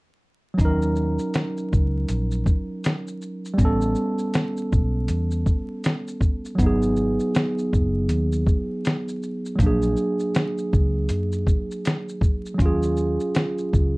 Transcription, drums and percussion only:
0.58 kick, closed hi-hat, shaker
0.82 shaker
0.96 shaker
1.19 shaker
1.34 snare, closed hi-hat, shaker
1.57 shaker
1.73 kick, shaker
2.08 closed hi-hat, shaker
2.31 shaker
2.46 kick, shaker
2.84 snare, closed hi-hat, shaker
3.07 shaker
3.22 shaker
3.45 shaker
3.58 kick, closed hi-hat, shaker
3.81 shaker
3.95 shaker
4.19 shaker
4.34 snare, closed hi-hat, shaker
4.57 shaker
4.72 kick, shaker
5.08 closed hi-hat, shaker
5.31 shaker
5.46 kick, shaker
5.84 snare, closed hi-hat, shaker
6.08 shaker
6.21 kick, shaker
6.45 shaker
6.58 kick, closed hi-hat, shaker
6.82 shaker
6.96 shaker
7.20 shaker
7.35 snare, closed hi-hat, shaker
7.58 shaker
7.73 kick, shaker
8.09 closed hi-hat, shaker
8.32 shaker
8.47 kick, shaker
8.85 snare, closed hi-hat, shaker
9.08 shaker
9.23 shaker
9.46 shaker
9.59 kick, closed hi-hat, shaker
9.82 shaker
9.97 shaker
10.20 shaker
10.35 snare, closed hi-hat, shaker
10.58 shaker
10.73 kick, shaker
11.09 closed hi-hat, shaker
11.32 shaker
11.47 kick, shaker
11.71 shaker
11.85 snare, closed hi-hat, shaker
12.09 shaker
12.21 kick, shaker
12.46 shaker
12.59 kick, closed hi-hat, shaker
12.83 shaker
12.97 shaker
13.20 shaker
13.35 snare, closed hi-hat, shaker
13.58 shaker
13.73 kick, shaker

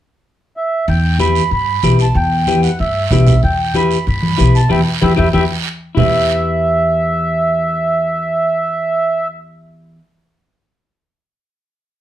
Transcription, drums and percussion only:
0.88 long guiro
1.19 high conga, short guiro
1.35 short guiro
1.51 long guiro
1.83 high conga, short guiro
1.99 short guiro
2.15 long guiro
2.47 high conga, short guiro
2.63 short guiro
2.79 long guiro
3.11 high conga, low conga, short guiro
3.27 low conga, short guiro
3.43 long guiro
3.74 high conga, short guiro
3.91 short guiro
4.07 long guiro
4.23 high conga
4.38 high conga, short guiro
4.55 short guiro
4.70 high conga, long guiro
5.02 high conga, long guiro
5.18 high conga, long guiro
5.34 high conga, long guiro
5.97 low conga, long guiro

